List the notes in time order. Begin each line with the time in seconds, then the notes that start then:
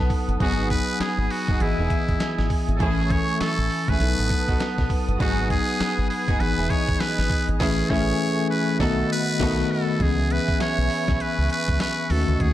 Already playing: F#3 B3 D#4 A4 B4 F#5 A5 D#6
0.10 kick, open hi-hat
0.28 G1, closed hi-hat
0.40 G#1 F#3 B3 D#4 F#4 G#4 G#5, kick, closed hi-hat
0.70 B4, kick, closed hi-hat
0.89 closed hi-hat
1.00 G#4, muted fingered electric bass stroke, snare, clap, closed hi-hat
1.18 G#1
1.30 F#4, open hi-hat
1.48 F#1 B3 D#4 F#4 G#4, kick
1.60 G#1 E3 B3 E4 G#4 D#5 G#5, closed hi-hat
1.78 E1 B3 D#4 E4 G#4
1.90 kick, closed hi-hat
2.08 G#1, kick, closed hi-hat
2.20 snare, clap, closed hi-hat
2.38 G#1, snare
2.50 kick, open hi-hat
2.68 G#1, closed hi-hat
2.76 A4
2.80 A1 E3 A3 C#4 E4 G#4 G#5 C#6, kick, closed hi-hat
3.10 C#5, kick, closed hi-hat
3.28 closed hi-hat
3.40 A4, muted fingered electric bass stroke, snare, clap, closed hi-hat
3.58 A1
3.70 open hi-hat
3.88 G#1 A3 C#4 E4 G#4 B4, kick, closed hi-hat
4.00 B1 F#3 B3 D#4 A4 B4 F#5 A5 D#6, closed hi-hat
4.18 A1
4.30 kick, closed hi-hat
4.48 B1 B3 D#4 F#4 A4, kick, closed hi-hat
4.60 snare, clap, closed hi-hat
4.78 B1, kick, snare
4.90 kick, open hi-hat
5.08 G1, closed hi-hat
5.20 G#1 F#3 B3 D#4 F#4 G#4 B4 F#5 G#5, kick, closed hi-hat
5.50 G#4, kick, closed hi-hat
5.68 closed hi-hat
5.80 muted fingered electric bass stroke, snare, clap, closed hi-hat
5.98 G#1
6.10 G#4, open hi-hat
6.28 F#1 B3 D#4 F#4 G#4, kick, closed hi-hat
6.40 G#1 E3 B3 D#4 G#4 B4 D#5, closed hi-hat
6.58 E1 B3 D#4 E4 G#4
6.70 C#5, kick, closed hi-hat
6.88 G#1, kick, closed hi-hat
7.00 B4, snare, clap, closed hi-hat
7.18 G#1, snare
7.30 kick, open hi-hat
7.49 G#1, closed hi-hat
7.60 A1 E3 A3 C#4 E4 G#4 E5 G#5 C#6, kick, snare, crash
7.89 A1 E3 A3 C#4 E4 G#4 C#5, kick, snare
8.50 B4
8.79 B1 D#3 A3 B3 D#4 F#4 A4 D#5 F#5 B5, kick, snare
9.12 B4
9.39 B1 D#3 A3 B3 D#4 F#4 A4, kick, snare, crash
9.72 A4
10.00 C#2 E3 B3 C#4 G#4 B4 E5 G#5 C#6, kick, closed hi-hat
10.30 B4, closed hi-hat
10.48 kick, closed hi-hat
10.60 C#5, snare, clap, closed hi-hat
10.78 B1
10.90 open hi-hat
11.08 B1, kick, snare
11.20 B4, closed hi-hat
11.38 C#2
11.50 B4, closed hi-hat
11.68 C#2, kick, closed hi-hat
11.80 B4, snare, clap, closed hi-hat
12.10 D#2 D#3 A3 C#4 F#4 A4 D#5 F#5, open hi-hat
12.28 D2, closed hi-hat
12.40 D#2 G#4, kick, closed hi-hat